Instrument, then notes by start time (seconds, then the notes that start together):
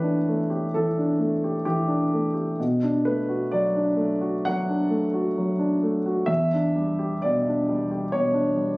grand piano
Already playing: A2 E3 A3 D4 G4 B4 C#5
0.02 D4
0.28 A3
0.50 G4
0.74 E3 A4
0.98 D4
1.19 A3
1.44 G4
1.65 E3 G4
1.87 D4
2.13 A3
2.34 G4
2.60 B2
2.83 D4
3.05 A3 B4
3.29 F#4
3.51 F#3 D5
3.76 D4
3.96 A3
4.21 F#4
4.45 F#3 F#5
4.69 D4
4.90 A3
5.14 F#4
5.38 F#3
5.59 D4
5.83 A3
6.06 F#4
6.26 E2 E5
6.53 D4
6.76 G3
6.99 G4
7.22 B2 D5
7.48 D4
7.69 G3
7.91 G4
8.12 B2 C#5
8.33 D4
8.56 G3